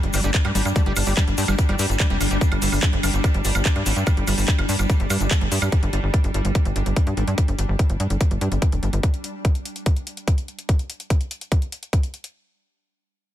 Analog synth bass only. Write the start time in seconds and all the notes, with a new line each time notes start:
0.03 G1
0.14 G1
0.24 G1
0.45 G2
0.55 G#1
0.65 G2
0.86 G1
0.96 G1
1.07 G1
1.27 G1
1.38 G2
1.48 G1
1.69 G1
1.79 G2
1.90 G1
2.10 F1
2.21 G1
2.31 G1
2.52 G1
2.62 G1
2.72 G1
2.93 G1
3.03 G1
3.14 G1
3.34 G1
3.45 G1
3.55 G1
3.76 G2
3.86 G#1
3.96 G2
4.17 G1
4.28 G1
4.38 G1
4.59 G1
4.69 G2
4.79 G1
5.00 G1
5.10 G2
5.21 G1
5.41 G1
5.52 G2
5.62 G2
5.83 G1
5.93 G1
6.03 G1
6.24 G1
6.34 G1
6.45 G1
6.65 G1
6.76 G1
6.86 G1
7.07 G2
7.17 G#1
7.28 G2
7.48 G1
7.59 G1
7.69 G1
7.90 G1
8.00 G2
8.10 G1
8.31 G1
8.41 G2
8.52 G1
8.72 F1
8.83 G1
8.93 G1